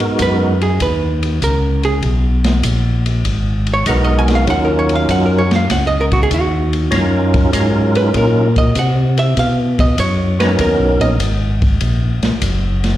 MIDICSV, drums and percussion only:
0, 0, Header, 1, 2, 480
1, 0, Start_track
1, 0, Key_signature, -6, "minor"
1, 0, Tempo, 610998
1, 1597, Time_signature, 4, 2, 24, 8
1, 10192, End_track
2, 0, Start_track
2, 0, Title_t, "Drums"
2, 0, Note_on_c, 9, 51, 53
2, 79, Note_off_c, 9, 51, 0
2, 148, Note_on_c, 9, 44, 54
2, 148, Note_on_c, 9, 51, 68
2, 153, Note_on_c, 9, 36, 20
2, 226, Note_off_c, 9, 44, 0
2, 226, Note_off_c, 9, 51, 0
2, 232, Note_off_c, 9, 36, 0
2, 482, Note_on_c, 9, 51, 47
2, 561, Note_off_c, 9, 51, 0
2, 629, Note_on_c, 9, 51, 68
2, 635, Note_on_c, 9, 36, 23
2, 708, Note_off_c, 9, 51, 0
2, 713, Note_off_c, 9, 36, 0
2, 963, Note_on_c, 9, 51, 48
2, 1042, Note_off_c, 9, 51, 0
2, 1114, Note_on_c, 9, 44, 58
2, 1114, Note_on_c, 9, 51, 59
2, 1116, Note_on_c, 9, 36, 18
2, 1193, Note_off_c, 9, 44, 0
2, 1193, Note_off_c, 9, 51, 0
2, 1194, Note_off_c, 9, 36, 0
2, 1440, Note_on_c, 9, 51, 46
2, 1518, Note_off_c, 9, 51, 0
2, 1590, Note_on_c, 9, 51, 56
2, 1595, Note_on_c, 9, 36, 20
2, 1669, Note_off_c, 9, 51, 0
2, 1673, Note_off_c, 9, 36, 0
2, 1919, Note_on_c, 9, 51, 52
2, 1923, Note_on_c, 9, 38, 62
2, 1997, Note_off_c, 9, 51, 0
2, 2001, Note_off_c, 9, 38, 0
2, 2068, Note_on_c, 9, 44, 64
2, 2068, Note_on_c, 9, 51, 77
2, 2075, Note_on_c, 9, 36, 21
2, 2147, Note_off_c, 9, 44, 0
2, 2147, Note_off_c, 9, 51, 0
2, 2154, Note_off_c, 9, 36, 0
2, 2402, Note_on_c, 9, 51, 51
2, 2481, Note_off_c, 9, 51, 0
2, 2552, Note_on_c, 9, 51, 63
2, 2555, Note_on_c, 9, 36, 21
2, 2630, Note_off_c, 9, 51, 0
2, 2634, Note_off_c, 9, 36, 0
2, 2879, Note_on_c, 9, 51, 47
2, 2958, Note_off_c, 9, 51, 0
2, 3030, Note_on_c, 9, 44, 52
2, 3030, Note_on_c, 9, 51, 72
2, 3035, Note_on_c, 9, 36, 26
2, 3109, Note_off_c, 9, 44, 0
2, 3109, Note_off_c, 9, 51, 0
2, 3114, Note_off_c, 9, 36, 0
2, 3361, Note_on_c, 9, 51, 51
2, 3365, Note_on_c, 9, 38, 47
2, 3440, Note_off_c, 9, 51, 0
2, 3444, Note_off_c, 9, 38, 0
2, 3513, Note_on_c, 9, 51, 61
2, 3516, Note_on_c, 9, 36, 25
2, 3592, Note_off_c, 9, 51, 0
2, 3595, Note_off_c, 9, 36, 0
2, 3843, Note_on_c, 9, 51, 51
2, 3921, Note_off_c, 9, 51, 0
2, 3996, Note_on_c, 9, 44, 61
2, 3996, Note_on_c, 9, 51, 68
2, 3998, Note_on_c, 9, 36, 21
2, 4075, Note_off_c, 9, 44, 0
2, 4075, Note_off_c, 9, 51, 0
2, 4076, Note_off_c, 9, 36, 0
2, 4329, Note_on_c, 9, 51, 48
2, 4333, Note_on_c, 9, 38, 71
2, 4407, Note_off_c, 9, 51, 0
2, 4411, Note_off_c, 9, 38, 0
2, 4476, Note_on_c, 9, 51, 72
2, 4478, Note_on_c, 9, 36, 19
2, 4480, Note_on_c, 9, 38, 45
2, 4554, Note_off_c, 9, 51, 0
2, 4556, Note_off_c, 9, 36, 0
2, 4558, Note_off_c, 9, 38, 0
2, 4804, Note_on_c, 9, 51, 49
2, 4808, Note_on_c, 9, 36, 57
2, 4883, Note_off_c, 9, 51, 0
2, 4886, Note_off_c, 9, 36, 0
2, 4955, Note_on_c, 9, 44, 53
2, 4955, Note_on_c, 9, 51, 71
2, 4958, Note_on_c, 9, 36, 25
2, 5034, Note_off_c, 9, 44, 0
2, 5034, Note_off_c, 9, 51, 0
2, 5036, Note_off_c, 9, 36, 0
2, 5287, Note_on_c, 9, 51, 51
2, 5365, Note_off_c, 9, 51, 0
2, 5433, Note_on_c, 9, 51, 69
2, 5437, Note_on_c, 9, 36, 23
2, 5437, Note_on_c, 9, 38, 37
2, 5511, Note_off_c, 9, 51, 0
2, 5515, Note_off_c, 9, 38, 0
2, 5516, Note_off_c, 9, 36, 0
2, 5765, Note_on_c, 9, 51, 54
2, 5768, Note_on_c, 9, 36, 68
2, 5843, Note_off_c, 9, 51, 0
2, 5847, Note_off_c, 9, 36, 0
2, 5916, Note_on_c, 9, 44, 64
2, 5916, Note_on_c, 9, 51, 69
2, 5918, Note_on_c, 9, 36, 22
2, 5995, Note_off_c, 9, 44, 0
2, 5995, Note_off_c, 9, 51, 0
2, 5997, Note_off_c, 9, 36, 0
2, 6247, Note_on_c, 9, 51, 47
2, 6326, Note_off_c, 9, 51, 0
2, 6395, Note_on_c, 9, 51, 68
2, 6398, Note_on_c, 9, 36, 25
2, 6474, Note_off_c, 9, 51, 0
2, 6477, Note_off_c, 9, 36, 0
2, 6725, Note_on_c, 9, 51, 47
2, 6729, Note_on_c, 9, 36, 55
2, 6804, Note_off_c, 9, 51, 0
2, 6808, Note_off_c, 9, 36, 0
2, 6876, Note_on_c, 9, 44, 55
2, 6876, Note_on_c, 9, 51, 65
2, 6879, Note_on_c, 9, 36, 17
2, 6955, Note_off_c, 9, 44, 0
2, 6955, Note_off_c, 9, 51, 0
2, 6957, Note_off_c, 9, 36, 0
2, 7208, Note_on_c, 9, 51, 52
2, 7286, Note_off_c, 9, 51, 0
2, 7359, Note_on_c, 9, 51, 65
2, 7361, Note_on_c, 9, 36, 24
2, 7438, Note_off_c, 9, 51, 0
2, 7439, Note_off_c, 9, 36, 0
2, 7688, Note_on_c, 9, 51, 56
2, 7691, Note_on_c, 9, 36, 73
2, 7767, Note_off_c, 9, 51, 0
2, 7770, Note_off_c, 9, 36, 0
2, 7840, Note_on_c, 9, 44, 65
2, 7840, Note_on_c, 9, 51, 77
2, 7841, Note_on_c, 9, 36, 25
2, 7918, Note_off_c, 9, 44, 0
2, 7918, Note_off_c, 9, 51, 0
2, 7919, Note_off_c, 9, 36, 0
2, 8171, Note_on_c, 9, 51, 51
2, 8175, Note_on_c, 9, 38, 49
2, 8249, Note_off_c, 9, 51, 0
2, 8253, Note_off_c, 9, 38, 0
2, 8316, Note_on_c, 9, 51, 68
2, 8319, Note_on_c, 9, 36, 24
2, 8395, Note_off_c, 9, 51, 0
2, 8398, Note_off_c, 9, 36, 0
2, 8648, Note_on_c, 9, 51, 50
2, 8726, Note_off_c, 9, 51, 0
2, 8797, Note_on_c, 9, 44, 49
2, 8797, Note_on_c, 9, 51, 73
2, 8798, Note_on_c, 9, 36, 24
2, 8876, Note_off_c, 9, 44, 0
2, 8876, Note_off_c, 9, 51, 0
2, 8877, Note_off_c, 9, 36, 0
2, 9127, Note_on_c, 9, 51, 50
2, 9129, Note_on_c, 9, 36, 72
2, 9205, Note_off_c, 9, 51, 0
2, 9207, Note_off_c, 9, 36, 0
2, 9274, Note_on_c, 9, 51, 69
2, 9278, Note_on_c, 9, 36, 21
2, 9353, Note_off_c, 9, 51, 0
2, 9356, Note_off_c, 9, 36, 0
2, 9604, Note_on_c, 9, 51, 57
2, 9608, Note_on_c, 9, 38, 61
2, 9683, Note_off_c, 9, 51, 0
2, 9686, Note_off_c, 9, 38, 0
2, 9754, Note_on_c, 9, 44, 59
2, 9754, Note_on_c, 9, 51, 81
2, 9757, Note_on_c, 9, 36, 28
2, 9832, Note_off_c, 9, 44, 0
2, 9832, Note_off_c, 9, 51, 0
2, 9835, Note_off_c, 9, 36, 0
2, 10084, Note_on_c, 9, 51, 51
2, 10088, Note_on_c, 9, 38, 39
2, 10163, Note_off_c, 9, 51, 0
2, 10167, Note_off_c, 9, 38, 0
2, 10192, End_track
0, 0, End_of_file